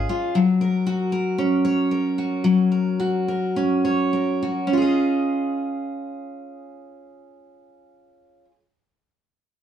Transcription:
0, 0, Header, 1, 2, 480
1, 0, Start_track
1, 0, Key_signature, -5, "major"
1, 0, Tempo, 519931
1, 315, Time_signature, 4, 2, 24, 8
1, 1758, Tempo, 547945
1, 3198, Tempo, 585366
1, 4158, Tempo, 604839
1, 8054, End_track
2, 0, Start_track
2, 0, Title_t, "Steel-string acoustic guitar"
2, 0, Program_c, 0, 25
2, 0, Note_on_c, 0, 61, 70
2, 0, Note_on_c, 0, 68, 52
2, 0, Note_on_c, 0, 75, 61
2, 86, Note_on_c, 0, 65, 50
2, 323, Note_on_c, 0, 54, 68
2, 372, Note_off_c, 0, 68, 0
2, 373, Note_off_c, 0, 75, 0
2, 376, Note_off_c, 0, 65, 0
2, 563, Note_on_c, 0, 70, 52
2, 799, Note_on_c, 0, 66, 54
2, 1024, Note_off_c, 0, 70, 0
2, 1035, Note_on_c, 0, 70, 52
2, 1274, Note_off_c, 0, 61, 0
2, 1278, Note_on_c, 0, 61, 54
2, 1520, Note_on_c, 0, 73, 58
2, 1754, Note_off_c, 0, 70, 0
2, 1765, Note_on_c, 0, 70, 49
2, 1991, Note_off_c, 0, 66, 0
2, 2001, Note_on_c, 0, 66, 48
2, 2218, Note_off_c, 0, 54, 0
2, 2228, Note_on_c, 0, 54, 63
2, 2459, Note_off_c, 0, 70, 0
2, 2469, Note_on_c, 0, 70, 46
2, 2704, Note_off_c, 0, 66, 0
2, 2715, Note_on_c, 0, 66, 51
2, 2952, Note_off_c, 0, 70, 0
2, 2966, Note_on_c, 0, 70, 50
2, 3208, Note_off_c, 0, 61, 0
2, 3211, Note_on_c, 0, 61, 54
2, 3439, Note_off_c, 0, 73, 0
2, 3442, Note_on_c, 0, 73, 54
2, 3665, Note_off_c, 0, 70, 0
2, 3675, Note_on_c, 0, 70, 47
2, 3908, Note_off_c, 0, 66, 0
2, 3917, Note_on_c, 0, 66, 45
2, 4115, Note_off_c, 0, 61, 0
2, 4118, Note_on_c, 0, 61, 61
2, 4159, Note_off_c, 0, 54, 0
2, 4166, Note_off_c, 0, 66, 0
2, 4169, Note_on_c, 0, 65, 57
2, 4200, Note_off_c, 0, 70, 0
2, 4203, Note_on_c, 0, 68, 62
2, 4233, Note_off_c, 0, 73, 0
2, 4236, Note_on_c, 0, 75, 63
2, 7116, Note_off_c, 0, 61, 0
2, 7165, Note_off_c, 0, 65, 0
2, 7200, Note_off_c, 0, 68, 0
2, 7233, Note_off_c, 0, 75, 0
2, 8054, End_track
0, 0, End_of_file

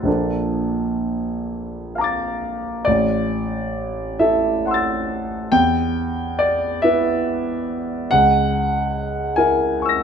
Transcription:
0, 0, Header, 1, 2, 480
1, 0, Start_track
1, 0, Tempo, 933126
1, 32, Time_signature, 6, 3, 24, 8
1, 1471, Tempo, 891530
1, 2911, Tempo, 855920
1, 5433, End_track
2, 0, Start_track
2, 0, Title_t, "Grand piano"
2, 0, Program_c, 0, 0
2, 0, Control_c, 0, 64, 127
2, 15, Note_on_c, 0, 34, 36
2, 21, Note_on_c, 0, 53, 30
2, 24, Note_on_c, 0, 58, 29
2, 32, Note_on_c, 0, 62, 31
2, 37, Note_on_c, 0, 69, 30
2, 41, Control_c, 0, 64, 0
2, 144, Control_c, 0, 64, 127
2, 1004, Note_on_c, 0, 77, 26
2, 1020, Note_on_c, 0, 82, 27
2, 1035, Note_on_c, 0, 86, 27
2, 1049, Note_on_c, 0, 93, 29
2, 1443, Note_off_c, 0, 34, 0
2, 1446, Note_off_c, 0, 53, 0
2, 1448, Note_off_c, 0, 58, 0
2, 1451, Note_off_c, 0, 62, 0
2, 1454, Note_off_c, 0, 69, 0
2, 1457, Note_off_c, 0, 77, 0
2, 1464, Note_off_c, 0, 82, 0
2, 1464, Note_on_c, 0, 74, 66
2, 1472, Note_off_c, 0, 86, 0
2, 1476, Note_on_c, 0, 33, 45
2, 1479, Note_off_c, 0, 93, 0
2, 1480, Control_c, 0, 64, 0
2, 1568, Control_c, 0, 64, 127
2, 2188, Note_off_c, 0, 74, 0
2, 2189, Note_on_c, 0, 76, 53
2, 2190, Note_on_c, 0, 64, 36
2, 2196, Note_on_c, 0, 69, 36
2, 2437, Note_on_c, 0, 78, 32
2, 2447, Note_on_c, 0, 84, 31
2, 2467, Note_on_c, 0, 88, 30
2, 2484, Note_on_c, 0, 93, 32
2, 2889, Note_off_c, 0, 64, 0
2, 2892, Note_off_c, 0, 33, 0
2, 2892, Note_off_c, 0, 69, 0
2, 2893, Note_off_c, 0, 78, 0
2, 2898, Note_off_c, 0, 84, 0
2, 2901, Note_on_c, 0, 79, 70
2, 2902, Note_on_c, 0, 40, 45
2, 2908, Note_off_c, 0, 88, 0
2, 2910, Note_off_c, 0, 76, 0
2, 2917, Note_off_c, 0, 93, 0
2, 2920, Control_c, 0, 64, 0
2, 3015, Control_c, 0, 64, 127
2, 3389, Note_on_c, 0, 74, 64
2, 3392, Note_off_c, 0, 79, 0
2, 3632, Note_on_c, 0, 76, 66
2, 3634, Note_off_c, 0, 74, 0
2, 3643, Note_on_c, 0, 64, 37
2, 3645, Note_on_c, 0, 71, 38
2, 4337, Note_off_c, 0, 40, 0
2, 4345, Note_off_c, 0, 64, 0
2, 4346, Note_off_c, 0, 71, 0
2, 4354, Note_on_c, 0, 78, 75
2, 4362, Note_off_c, 0, 76, 0
2, 4362, Note_on_c, 0, 37, 44
2, 4371, Control_c, 0, 64, 0
2, 4449, Control_c, 0, 64, 127
2, 5057, Note_on_c, 0, 80, 60
2, 5065, Note_on_c, 0, 64, 34
2, 5065, Note_on_c, 0, 70, 40
2, 5069, Note_off_c, 0, 78, 0
2, 5292, Note_off_c, 0, 80, 0
2, 5300, Note_on_c, 0, 80, 33
2, 5315, Note_on_c, 0, 85, 31
2, 5334, Note_on_c, 0, 88, 33
2, 5354, Note_on_c, 0, 94, 34
2, 5433, Note_off_c, 0, 37, 0
2, 5433, Note_off_c, 0, 64, 0
2, 5433, Note_off_c, 0, 70, 0
2, 5433, Note_off_c, 0, 80, 0
2, 5433, Note_off_c, 0, 85, 0
2, 5433, Note_off_c, 0, 88, 0
2, 5433, Note_off_c, 0, 94, 0
2, 5433, End_track
0, 0, End_of_file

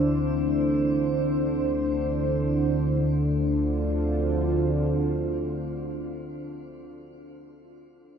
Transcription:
0, 0, Header, 1, 3, 480
1, 0, Start_track
1, 0, Key_signature, -1, "minor"
1, 0, Tempo, 500000
1, 7857, End_track
2, 0, Start_track
2, 0, Title_t, "Analog synth pad"
2, 0, Program_c, 0, 89
2, 0, Note_on_c, 0, 62, 77
2, 0, Note_on_c, 0, 64, 81
2, 0, Note_on_c, 0, 72, 72
2, 2894, Note_off_c, 0, 62, 0
2, 2903, Note_off_c, 0, 64, 0
2, 2904, Note_off_c, 0, 72, 0
2, 2906, Note_on_c, 0, 62, 69
2, 3100, Note_on_c, 0, 65, 75
2, 3241, Note_on_c, 0, 72, 65
2, 5857, Note_off_c, 0, 62, 0
2, 6051, Note_off_c, 0, 65, 0
2, 6192, Note_off_c, 0, 72, 0
2, 7857, End_track
3, 0, Start_track
3, 0, Title_t, "Synth drone"
3, 0, Program_c, 1, 95
3, 0, Note_on_c, 1, 38, 76
3, 0, Note_on_c, 1, 50, 73
3, 2901, Note_off_c, 1, 50, 0
3, 2906, Note_off_c, 1, 38, 0
3, 2912, Note_on_c, 1, 50, 75
3, 2918, Note_on_c, 1, 38, 69
3, 5863, Note_off_c, 1, 50, 0
3, 5869, Note_off_c, 1, 38, 0
3, 7857, End_track
0, 0, End_of_file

